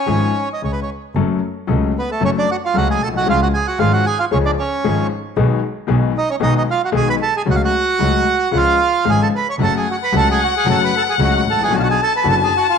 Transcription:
Already playing: bandoneon C#4 C#5, violin G#5
0.07 grand piano G#1 G#2 F3 G#3 C#4 G#4, double bass G#1
0.53 bandoneon D#5
0.62 double bass C#2, grand piano C#2 C#3, bandoneon C#5
0.72 bandoneon B4
0.82 bandoneon C#5
1.15 double bass F#1, grand piano F#2 F#3 A3 C#4 A4
1.67 grand piano C#2 C#3 F#3 A3 C#4 A4, double bass C#2
1.98 bandoneon B3 B4
2.11 bandoneon A3 A4
2.21 double bass F#1, grand piano F#2 F#3 A3 C#4 A4, bandoneon C#4
2.25 bandoneon C#5
2.37 bandoneon D4 D5
2.51 bandoneon F#4 F#5
2.65 bandoneon F4 F5
2.74 double bass C#2, grand piano C#2 C#3 F#3 A3 C#4 A4, bandoneon F#4 F#5
2.91 bandoneon G#4 G#5
3.01 double bass B1, bandoneon A4 A5
3.07 grand piano A#1
3.14 grand piano B1, bandoneon F#4 F#5
3.21 grand piano C2
3.26 grand piano C#2 C#3 F3 G#3 C#4 G#4, double bass C#2, bandoneon F4 F5
3.43 bandoneon F#4 F#5
3.54 bandoneon G#4 G#5
3.67 bandoneon F#4 F#5
3.79 grand piano G#1 G#2 F3 G#3 C#4 G#4, double bass G#1, bandoneon F4 F5
3.93 bandoneon F#4 F#5
4.06 bandoneon G#4 G#5
4.19 bandoneon F4 F5
4.31 grand piano C#2 C#3 F3 G#3 C#4 G#4, double bass C#2, bandoneon C#4 C#5
4.45 bandoneon D4 D5
4.59 bandoneon C#4 C#5
4.84 grand piano G#1 G#2 F3 G#3 C#4 G#4, double bass G#1
5.37 grand piano B1 B2 D#3 G#3 B3 G#4, double bass B1
5.87 grand piano B1 B2 D#3 G#3 B3 G#4, double bass B1
6.18 bandoneon D#4 D#5
6.30 bandoneon C#4 C#5
6.40 grand piano B1 B2 D#3 G#3 B3 G#4, double bass B1, bandoneon D#4 D#5
6.57 bandoneon D#4 D#5
6.71 bandoneon F4 F5
6.85 bandoneon F#4 F#5
6.92 grand piano B1 B2 D#3 G#3 B3 G#4, double bass B1
6.96 bandoneon G#4 G#5
7.09 bandoneon B4 B5
7.22 bandoneon A4 A5
7.37 bandoneon G#4 G#5
7.45 grand piano C#2 C#3 F#3 A3 F#4, double bass C#2
7.50 bandoneon F#4 F#5
7.56 bandoneon F5
7.64 bandoneon F#4 F#5
7.99 grand piano C#2 C#3 F#3 A3 F#4, double bass C#2
8.51 grand piano C#2 C#3 F3 G#3 F4, double bass C#2
8.57 bandoneon F4 F5
9.05 grand piano G#1 G#2 C#3 F3 G#3 F4, double bass G#1
9.09 bandoneon G#4 G#5
9.22 bandoneon A4 A5
9.36 bandoneon B4 B5
9.49 bandoneon C#5 C#6
9.59 double bass F#1, grand piano F#2 C#3 F#3 A3 F#4, bandoneon A4, violin F#5
9.65 bandoneon A5
9.77 bandoneon G#4 G#5
9.91 bandoneon F#4 F#5
10.03 bandoneon B4 B5
10.12 grand piano C#2 C#3 F#3 A3 F#4, double bass C#2
10.17 bandoneon A4 A5
10.31 bandoneon G#4 G#5
10.44 bandoneon F#4 F#5
10.57 bandoneon G#4 G#5
10.66 double bass F#1, grand piano F#2 C#3 F#3 A3 F#4, bandoneon A4
10.71 bandoneon A5
10.84 bandoneon B4 B5
10.97 bandoneon A4 A5
11.09 bandoneon G#4 G#5
11.18 double bass C#2, grand piano C#2 C#3 F#3 A3 F#4
11.23 bandoneon F#4 F#5
11.36 bandoneon F#4 F#5
11.46 double bass A1, bandoneon A4
11.52 grand piano G#1, bandoneon A5
11.58 grand piano A1
11.63 grand piano A#1, bandoneon G#4 G#5
11.71 grand piano B1 B2 D3 F#3 B3 F#4, double bass B1, violin A5
11.75 bandoneon F#4 F#5
11.80 bandoneon F#4 F5
11.84 bandoneon F#5
11.90 bandoneon G#4 G#5
12.03 bandoneon A4 A5
12.16 bandoneon B4 B5
12.24 grand piano F#1 F#2 D3 F#3 B3 F#4, double bass F#1
12.30 bandoneon A4 A5
12.44 bandoneon G#4 G#5
12.57 bandoneon F#4 F#5
12.70 bandoneon F4 F5

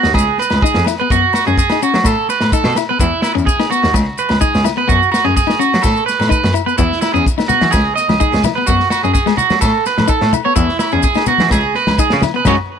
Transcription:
Already playing: clean electric guitar F#4
0.03 cello D#2, snare, maracas
0.14 cello C#2, clean electric guitar G#4, kick, snare, low agogo
0.18 maracas
0.38 clean electric guitar B4, snare, maracas
0.50 cello C#2, snare, low agogo
0.62 clean electric guitar D#4 G#4, kick, maracas
0.74 cello F2, snare, maracas
0.84 clean electric guitar E4, snare, low agogo, maracas
1.00 clean electric guitar B3 B4
1.10 cello F#2, clean electric guitar B3 F#4, kick, maracas
1.33 clean electric guitar F#4, snare, low agogo, maracas
1.46 cello F#2, clean electric guitar C#4 G#4, maracas
1.57 clean electric guitar G#4, kick, snare, maracas
1.70 clean electric guitar D#4, snare, low agogo, maracas
1.83 clean electric guitar C#4 F#4, maracas
1.94 cello F#3, snare, maracas
2.04 cello A2, clean electric guitar A4, kick, snare, low agogo, maracas
2.29 clean electric guitar B4, snare, maracas
2.40 cello A2, snare, low agogo
2.52 clean electric guitar D#4 A4, kick, maracas
2.64 cello B2, snare, maracas
2.75 clean electric guitar E4, snare, low agogo, maracas
2.89 clean electric guitar B3 B4
3.00 cello E2, clean electric guitar B3 E4, kick, maracas
3.22 clean electric guitar E4, snare, low agogo, maracas
3.35 cello E2, clean electric guitar C#4, muted clean electric guitar stroke, maracas
3.46 clean electric guitar G#4, kick, maracas
3.59 clean electric guitar D#4, snare, low agogo, maracas
3.71 clean electric guitar B3 F#4, maracas
3.83 cello D#2, snare, maracas
3.94 cello C#2, muted clean electric guitar stroke, kick, snare, low agogo, maracas
4.18 clean electric guitar B4, maracas
4.29 cello C#2, snare, low agogo
4.41 clean electric guitar D#4 G#4, kick, maracas
4.54 cello C#2, snare, maracas
4.64 clean electric guitar E4, snare, low agogo, maracas
4.77 clean electric guitar B3 B4
4.88 cello F#2, clean electric guitar B3 F#4, kick, maracas
5.03 maracas
5.12 clean electric guitar F#4, snare, low agogo, maracas
5.24 cello F#2, clean electric guitar C#4 G#4
5.36 clean electric guitar G#4, kick, snare, maracas
5.47 clean electric guitar D#4, snare, low agogo, maracas
5.59 clean electric guitar C#4 F#4, maracas
5.74 cello F#3, snare, maracas
5.82 cello A2, clean electric guitar A4, kick, snare, low agogo, maracas
5.97 maracas
6.06 clean electric guitar B4, snare, maracas
6.19 cello A2, snare, low agogo, maracas
6.29 clean electric guitar D#4 B4, kick, maracas
6.44 cello F#2, snare, maracas
6.54 clean electric guitar E4, low agogo, maracas
6.66 clean electric guitar B3 B4, maracas
6.78 cello E2, clean electric guitar B3 E4, kick, maracas
6.92 snare
7.01 clean electric guitar E4, snare, low agogo, maracas
7.14 cello E2, clean electric guitar C#4 G#4, maracas
7.26 kick, maracas
7.38 clean electric guitar D#4, snare, low agogo, maracas
7.48 clean electric guitar B3 F#4, low conga, maracas
7.61 cello E3, snare, high conga, maracas
7.71 cello C#2, clean electric guitar G#4, kick, snare, low agogo, maracas
7.96 clean electric guitar D#5, snare, maracas
8.09 cello C#2, snare, high conga, low agogo
8.20 clean electric guitar D#4 G#4, kick, maracas
8.33 cello C#2, snare, maracas
8.44 clean electric guitar E4, snare, high conga, low conga, low agogo, maracas
8.55 clean electric guitar B3 B4
8.67 cello F#2, clean electric guitar B3 F#4, kick, maracas
8.80 snare
8.90 clean electric guitar F#4, snare, low agogo, maracas
9.03 cello F#2, clean electric guitar C#4 G#4, maracas
9.13 clean electric guitar G#4, kick, snare, maracas
9.26 clean electric guitar G#3, snare, low agogo, maracas
9.37 clean electric guitar F#4, muted clean electric guitar stroke, low conga, maracas
9.50 cello F#3, snare, high conga, maracas
9.61 cello A2, clean electric guitar A4, kick, snare, low agogo, maracas
9.86 clean electric guitar B4, snare, maracas
9.98 cello A2, snare, high conga, low agogo
10.08 clean electric guitar D#4 A4, kick, maracas
10.21 cello A2, snare
10.33 clean electric guitar E4, high conga, low conga, low agogo, maracas
10.45 clean electric guitar B3 C#5
10.56 cello E2, clean electric guitar B3 E4, kick, maracas
10.69 snare
10.79 clean electric guitar E4, snare, low agogo, maracas
10.92 cello E2, clean electric guitar C#4 G#4, maracas
11.03 clean electric guitar G#4, kick, maracas
11.15 clean electric guitar D#4, snare, low agogo, maracas
11.26 clean electric guitar B3 F#4, low conga, maracas
11.38 cello E3, snare, high conga, maracas
11.51 cello C#2, clean electric guitar G#4, kick, snare, low agogo, maracas
11.75 clean electric guitar B4, snare
11.87 cello C#2, snare, high conga, low agogo
11.99 clean electric guitar D#4 G#4, kick, maracas
12.10 cello C#3, snare, maracas
12.22 clean electric guitar E4, snare, high conga, low conga, low agogo, maracas
12.34 clean electric guitar B3 B4
12.45 cello F#2, clean electric guitar G#3 C#4 F#4 G#4 C#5, kick, snare, low conga, low agogo, maracas

